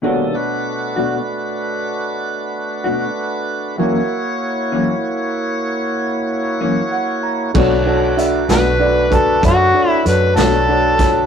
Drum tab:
CC |------------|------------|x-----------|
HH |------------|------------|--xx-xx-xx-x|
SD |------------|------------|---o-----o-o|
BD |------------|------------|o----oo----o|